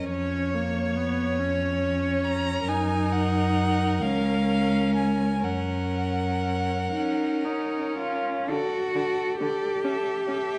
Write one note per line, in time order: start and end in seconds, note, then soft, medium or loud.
0.00 0.10 D#5 medium
0.11 2.64 F2 soft
0.11 0.56 C#4 soft
0.11 1.36 C#5 medium
0.11 2.64 C#5 soft
0.54 0.98 A#3 soft
0.96 1.40 B3 soft
1.38 2.69 C#4 soft
1.38 2.26 C#5 medium
2.24 2.70 A#5 medium
2.67 4.03 F#2 soft
2.67 4.03 D#4 soft
2.67 5.40 A#4 soft
2.67 3.14 G#5 medium
3.13 4.04 F#5 medium
4.01 5.46 C#2 soft
4.01 5.44 C#4 soft
4.01 4.95 F5 medium
4.96 5.46 G#5 medium
5.43 6.92 F#2 soft
5.43 6.80 C#4 soft
5.43 8.23 A#4 soft
5.43 7.99 F#5 medium
6.92 7.46 C#4 soft
6.92 7.46 D#4 soft
7.45 8.52 C#4 soft
7.45 7.97 D#4 soft
7.98 8.48 F4 soft
8.48 8.56 D3 soft
8.48 9.41 F#4 medium
8.48 8.95 A4 soft
8.48 8.96 D5 soft
8.95 9.03 D3 soft
8.95 9.40 A4 soft
8.95 9.41 D5 soft
9.40 9.49 D3 soft
9.40 10.59 G4 medium
9.40 9.84 A4 soft
9.40 9.84 D5 soft
9.84 9.92 C#4 soft
9.84 10.27 A4 soft
9.84 10.27 E5 soft
10.27 10.35 C#4 soft
10.27 10.59 A4 soft
10.27 10.59 E5 soft